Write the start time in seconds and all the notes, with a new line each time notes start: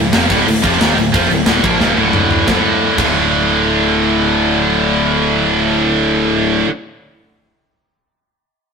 Already playing: D1 D2 A2
0.12 F1 F2 C3 F3, snare, crash
0.28 D1 D2 A2 D3, kick, crash
0.45 D1 D2 A2, crash
0.62 F1 F2 C3 F3, kick, crash
0.79 D#1 D#2 A#2 D#3, snare, crash
0.97 D1 D2 A2, crash
1.13 F1 F2 C3 F3, kick, crash
1.30 D1 D2 A2, crash
1.46 D1 D2 A2 D3, snare, crash
1.62 A#1 A#2 F3 A#3, kick, crash
1.78 D#1 D#2 A#2 D#3, snare
1.96 D1 D2 A2 D3, high tom
2.13 mid tom
2.31 floor tom
2.45 D1 D2 A2 D3, kick, snare
2.49 A3 F4
2.96 D1 D2 A2 D3 A3 F4, kick, crash
3.02 D3